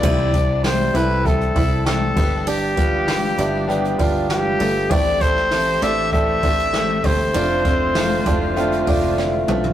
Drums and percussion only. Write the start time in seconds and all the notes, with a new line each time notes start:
0.03 kick, crash
0.34 kick, hi-hat pedal, open hi-hat
0.64 snare, hi-hat pedal, open hi-hat
0.95 hi-hat pedal, open hi-hat
1.10 open hi-hat
1.25 kick, hi-hat pedal, open hi-hat
1.41 hi-hat pedal
1.56 kick, hi-hat pedal, open hi-hat
1.86 snare, hi-hat pedal, open hi-hat
2.17 kick, crash
2.47 hi-hat pedal, open hi-hat
2.77 kick, hi-hat pedal, open hi-hat
3.08 snare, hi-hat pedal, open hi-hat
3.38 hi-hat pedal, open hi-hat
3.53 open hi-hat
3.69 hi-hat pedal, open hi-hat
3.84 hi-hat pedal
3.99 kick, hi-hat pedal, open hi-hat
4.30 snare, hi-hat pedal, open hi-hat
4.60 hi-hat pedal, open hi-hat
4.91 kick, hi-hat pedal, open hi-hat
5.21 kick, hi-hat pedal, open hi-hat
5.36 snare
5.51 snare, hi-hat pedal, open hi-hat
5.82 hi-hat pedal, open hi-hat
6.12 kick, hi-hat pedal, open hi-hat
6.27 open hi-hat
6.43 kick, hi-hat pedal, open hi-hat
6.59 hi-hat pedal
6.73 snare, hi-hat pedal, open hi-hat
7.04 kick, hi-hat pedal, open hi-hat
7.35 hi-hat pedal, open hi-hat
7.65 kick, hi-hat pedal, open hi-hat
7.95 snare, hi-hat pedal, open hi-hat
8.26 kick, hi-hat pedal, open hi-hat
8.41 open hi-hat
8.56 hi-hat pedal, open hi-hat
8.72 hi-hat pedal
8.87 kick, hi-hat pedal, open hi-hat
9.18 snare
9.48 mid tom
9.64 floor tom